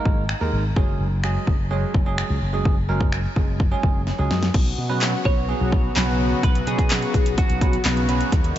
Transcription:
Already playing: G#3 A#3 D#4 A#4
0.05 G#1, kick
0.29 finger snap
0.41 D#2 G#3 A#3 D#4 A#4
0.53 G#1
0.76 F#1 F#3 G#3 C#4 G#4, kick
1.00 F#1
1.24 F#3 G#3 C#4 G#4, finger snap
1.47 F#1, kick
1.70 F#3 G#3 C#4 G#4
1.94 F#1, kick
2.06 F#3 G#3 C#4 G#4
2.18 finger snap
2.30 C#2
2.42 F#1
2.53 F#3 G#3 C#4 G#4
2.65 F#1, kick
2.89 F#1 F#3 G#3 C#4 A#4
3.01 kick
3.12 finger snap
3.36 F#1 F#3 G#3 C#4 G#4, kick
3.60 kick
3.71 F#3 G#3 C#4 G#4
3.83 F#1, kick
4.07 snare
4.18 C#2 F#3 G#3 C#4 G#4
4.31 F#2, snare
4.43 snare
4.54 B1 C#3 F#3 B3 F#4, kick, crash
4.78 B2
4.89 F#3 B3 C#4 B4
5.01 snare, clap
5.25 B1 F#3 B3 C#4 B4 C#5, kick
5.48 F#3 B3 C#4 G#4
5.61 B1
5.72 kick
5.95 B1 F#3 B3 C#4 B4, snare, clap
6.43 B1 F#3 B3 C#4 B4, kick, closed hi-hat
6.55 closed hi-hat
6.67 B2 F#3 B3 C#4 G#4 B4, closed hi-hat
6.78 kick, closed hi-hat
6.90 snare, clap, closed hi-hat
7.02 closed hi-hat
7.14 B1, kick, closed hi-hat
7.26 closed hi-hat
7.38 F#4, kick, closed hi-hat
7.50 B1, closed hi-hat
7.61 F#3 B3 C#4 B4, kick, closed hi-hat
7.73 closed hi-hat
7.85 B1 F#3 B3 C#4 B4, snare, clap, closed hi-hat
7.97 closed hi-hat
8.08 F#3 B3 C#4 B4, closed hi-hat
8.21 closed hi-hat
8.32 D#2 G3 A#3 D#4, kick, closed hi-hat
8.44 closed hi-hat

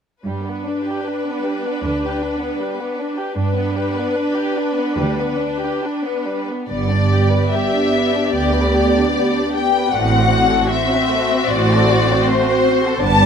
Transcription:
0.24 G2 G3 D4 B4
0.43 B3
0.65 D4
0.84 G4
1.05 D4
1.26 B3
1.43 G3
1.63 B3
1.82 D2 D4
2.02 G4
2.19 D4
2.39 B3
2.59 G3
2.78 B3
2.98 D4
3.17 G4
3.36 G2 D4 B4
3.54 B3
3.73 G3
3.94 B3
4.12 D4
4.34 G4
4.54 D4
4.75 B3
4.97 D2 G3
5.18 B3
5.37 D4
5.59 G4
5.81 D4
6.03 B3
6.25 G3
6.49 B3
6.69 G1 G2 B3 G4 D5
6.91 D4
7.11 G4
7.31 B4
7.52 G4 E5
7.74 D4
7.94 B3
8.12 D4
8.33 D2 G4 D5
8.54 B4
8.73 G4
8.94 D4
9.16 B3
9.34 D4
9.54 G4 G5
9.76 B4
9.92 A1 A2 A3 C4 F#4 F#5
10.11 C4
10.32 F#4
10.50 A4
10.69 F#4 C5 E5
10.90 C4
11.10 A3
11.31 C4
11.47 A1 A2 F#4 D5
11.70 A4
11.90 F#4
12.09 C4
12.27 A3 C5
12.47 C4
12.66 F#4
12.84 A4
13.03 G1 G2 B3 D4 D5 A5
13.22 D4

